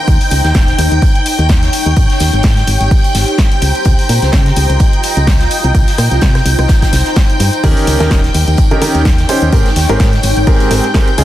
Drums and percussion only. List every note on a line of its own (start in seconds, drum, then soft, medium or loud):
0.07 kick loud
0.07 closed hi-hat medium
0.07 tambourine medium
0.21 open hi-hat medium
0.21 tambourine soft
0.30 closed hi-hat medium
0.30 open hi-hat loud
0.30 tambourine medium
0.44 snare soft
0.44 closed hi-hat soft
0.44 tambourine soft
0.54 kick loud
0.54 snare loud
0.54 closed hi-hat medium
0.54 tambourine soft
0.68 snare soft
0.68 closed hi-hat soft
0.78 closed hi-hat medium
0.78 open hi-hat loud
0.78 tambourine medium
0.92 closed hi-hat soft
0.92 tambourine soft
1.02 kick loud
1.02 closed hi-hat medium
1.02 tambourine soft
1.15 closed hi-hat soft
1.26 closed hi-hat medium
1.26 open hi-hat loud
1.26 tambourine medium
1.39 closed hi-hat soft
1.39 tambourine soft
1.49 kick loud
1.49 snare loud
1.49 closed hi-hat medium
1.49 tambourine medium
1.63 snare soft
1.63 closed hi-hat soft
1.63 tambourine soft
1.73 closed hi-hat medium
1.73 open hi-hat loud
1.73 tambourine medium
1.86 closed hi-hat soft
1.86 tambourine soft
1.96 kick loud
1.96 closed hi-hat medium
1.96 tambourine medium
2.10 snare soft
2.10 closed hi-hat soft
2.10 tambourine soft
2.20 snare soft
2.20 closed hi-hat medium
2.20 open hi-hat medium
2.20 tambourine medium
2.33 closed hi-hat soft
2.33 tambourine soft
2.43 kick loud
2.43 snare loud
2.43 closed hi-hat medium
2.43 tambourine medium
2.57 snare soft
2.57 closed hi-hat soft
2.67 closed hi-hat medium
2.67 open hi-hat loud
2.67 tambourine medium
2.81 closed hi-hat soft
2.81 tambourine soft
2.91 kick loud
2.91 closed hi-hat medium
2.91 open hi-hat medium
2.91 tambourine soft
3.04 closed hi-hat soft
3.04 tambourine soft
3.15 snare soft
3.15 closed hi-hat medium
3.15 open hi-hat loud
3.15 tambourine medium
3.28 closed hi-hat soft
3.28 tambourine soft
3.38 kick loud
3.38 snare loud
3.38 closed hi-hat medium
3.38 tambourine soft
3.52 closed hi-hat soft
3.52 tambourine soft
3.62 closed hi-hat medium
3.62 open hi-hat medium
3.62 tambourine medium
3.75 closed hi-hat soft
3.75 tambourine soft
3.85 kick loud
3.85 closed hi-hat medium
3.85 tambourine soft
3.99 open hi-hat medium
3.99 tambourine soft
4.09 closed hi-hat medium
4.09 open hi-hat medium
4.09 tambourine medium
4.22 snare soft
4.22 closed hi-hat soft
4.22 tambourine soft
4.32 kick loud
4.32 snare loud
4.32 closed hi-hat medium
4.32 tambourine medium
4.46 snare soft
4.46 closed hi-hat soft
4.56 closed hi-hat medium
4.56 open hi-hat loud
4.56 tambourine medium
4.69 closed hi-hat soft
4.69 tambourine soft
4.80 kick loud
4.80 closed hi-hat medium
4.80 tambourine medium
4.93 closed hi-hat soft
5.03 closed hi-hat medium
5.03 open hi-hat medium
5.03 tambourine medium
5.17 closed hi-hat soft
5.17 tambourine soft
5.27 kick loud
5.27 snare loud
5.27 closed hi-hat medium
5.27 closed hi-hat loud
5.27 tambourine soft
5.40 snare medium
5.40 closed hi-hat soft
5.40 tambourine soft
5.51 closed hi-hat medium
5.51 open hi-hat medium
5.51 tambourine medium
5.63 closed hi-hat soft
5.63 tambourine soft
5.75 kick loud
5.75 closed hi-hat medium
5.75 tambourine soft
5.87 snare soft
5.87 open hi-hat medium
5.87 tambourine soft
5.98 cross-stick medium
5.98 snare soft
5.98 closed hi-hat medium
5.98 open hi-hat loud
5.98 tambourine medium
6.11 closed hi-hat soft
6.11 tambourine soft
6.21 kick loud
6.21 snare loud
6.21 closed hi-hat medium
6.21 tambourine soft
6.35 cross-stick medium
6.35 snare soft
6.35 closed hi-hat soft
6.35 tambourine soft
6.46 closed hi-hat medium
6.46 open hi-hat loud
6.46 tambourine medium
6.58 cross-stick medium
6.58 closed hi-hat soft
6.58 tambourine soft
6.68 kick loud
6.68 snare loud
6.68 closed hi-hat medium
6.68 tambourine medium
6.82 kick medium
6.82 snare medium
6.82 closed hi-hat medium
6.82 closed hi-hat soft
6.82 tambourine soft
6.93 snare loud
6.93 closed hi-hat medium
6.93 open hi-hat loud
6.93 tambourine medium
7.06 snare soft
7.06 closed hi-hat soft
7.06 tambourine soft
7.16 kick loud
7.16 snare loud
7.16 closed hi-hat medium
7.16 tambourine medium
7.30 closed hi-hat soft
7.30 tambourine soft
7.40 closed hi-hat medium
7.40 open hi-hat loud
7.40 tambourine medium
7.53 closed hi-hat soft
7.53 tambourine soft
7.63 kick loud
7.63 closed hi-hat medium
7.63 crash medium
7.63 tambourine soft
7.77 open hi-hat medium
7.77 tambourine soft
7.87 closed hi-hat medium
7.87 open hi-hat loud
7.87 tambourine loud
8.00 snare soft
8.00 closed hi-hat soft
8.00 tambourine soft
8.11 kick loud
8.11 snare loud
8.11 closed hi-hat medium
8.11 tambourine soft
8.24 snare soft
8.24 closed hi-hat soft
8.34 closed hi-hat medium
8.34 open hi-hat loud
8.34 tambourine medium
8.48 closed hi-hat soft
8.48 tambourine soft
8.57 kick loud
8.57 closed hi-hat medium
8.57 tambourine soft
8.71 closed hi-hat soft
8.82 closed hi-hat medium
8.82 open hi-hat loud
8.82 tambourine medium
8.95 closed hi-hat soft
8.95 tambourine soft
9.05 kick loud
9.05 snare loud
9.05 closed hi-hat medium
9.05 tambourine soft
9.18 snare soft
9.18 closed hi-hat soft
9.18 tambourine soft
9.29 closed hi-hat medium
9.29 open hi-hat loud
9.29 tambourine medium
9.42 closed hi-hat soft
9.42 tambourine soft
9.53 kick loud
9.53 closed hi-hat medium
9.53 tambourine medium
9.66 snare soft
9.66 closed hi-hat soft
9.66 tambourine soft
9.76 snare soft
9.76 closed hi-hat medium
9.76 open hi-hat loud
9.76 tambourine medium
9.89 closed hi-hat soft
9.89 tambourine soft
10.00 kick loud
10.00 snare loud
10.00 closed hi-hat medium
10.00 tambourine soft
10.13 snare medium
10.13 closed hi-hat soft
10.23 closed hi-hat medium
10.23 open hi-hat loud
10.23 tambourine medium
10.37 closed hi-hat soft
10.37 tambourine soft
10.47 kick loud
10.47 closed hi-hat medium
10.47 open hi-hat medium
10.47 tambourine soft
10.60 closed hi-hat soft
10.60 tambourine soft
10.71 snare soft
10.71 closed hi-hat medium
10.71 open hi-hat loud
10.71 tambourine loud
10.84 closed hi-hat soft
10.84 tambourine soft
10.94 kick loud
10.94 snare loud
10.94 closed hi-hat medium
10.94 tambourine medium
11.07 closed hi-hat soft
11.07 tambourine soft
11.18 closed hi-hat medium
11.18 open hi-hat loud
11.18 tambourine medium